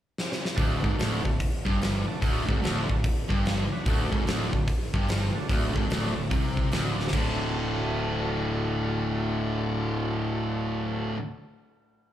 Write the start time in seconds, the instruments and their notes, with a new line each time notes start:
0.18 snare
0.32 snare
0.45 snare
0.56 fingered electric bass D1, distorted electric guitar D2, tonewheel organ D4 F#4 A4, kick, open hi-hat
0.83 fingered electric bass G#1, distorted electric guitar G#2, kick
0.98 fingered electric bass D1, distorted electric guitar D2, snare, open hi-hat
1.25 fingered electric bass D1, distorted electric guitar D2, kick
1.40 kick, open hi-hat
1.65 fingered electric bass G1, distorted electric guitar G2, kick
1.82 snare, open hi-hat
2.07 tonewheel organ D4 F#4 A4, muted distorted electric guitar stroke, muted fingered electric bass stroke
2.21 fingered electric bass D1, distorted electric guitar D2, tonewheel organ D4 F#4 A4, kick, open hi-hat
2.48 fingered electric bass G#1, distorted electric guitar G#2, kick
2.62 fingered electric bass D1, distorted electric guitar D2, snare, open hi-hat
2.89 fingered electric bass D1, distorted electric guitar D2, kick
3.04 kick, open hi-hat
3.29 fingered electric bass G1, distorted electric guitar G2, kick
3.45 snare, open hi-hat
3.70 tonewheel organ D4 F#4 B4, muted distorted electric guitar stroke, muted fingered electric bass stroke
3.85 fingered electric bass D1, distorted electric guitar D2, tonewheel organ D4 F#4 A4, kick, open hi-hat
4.11 fingered electric bass G#1, distorted electric guitar G#2, kick
4.26 fingered electric bass D1, distorted electric guitar D2, snare, open hi-hat
4.52 fingered electric bass D1, distorted electric guitar D2, kick
4.68 kick, open hi-hat
4.94 fingered electric bass G1, distorted electric guitar G2, kick
5.09 snare, open hi-hat
5.35 tonewheel organ D4 F#4 A4, muted distorted electric guitar stroke, muted fingered electric bass stroke
5.49 fingered electric bass D1, distorted electric guitar D2, tonewheel organ D4 F#4 A4, kick, open hi-hat
5.75 fingered electric bass G#1, distorted electric guitar G#2, kick
5.89 fingered electric bass D1, distorted electric guitar D2, snare, open hi-hat
6.15 fingered electric bass D1, distorted electric guitar D2
6.30 fingered electric bass C2, distorted electric guitar C3, kick, open hi-hat
6.57 kick
6.71 fingered electric bass D1, distorted electric guitar D2, snare, open hi-hat
6.98 tonewheel organ D4 F#4 A4, snare
7.07 distorted electric guitar D2, snare
7.12 fingered electric bass D1, distorted electric guitar A2 D3, tonewheel organ D4 F#4 A4, kick, crash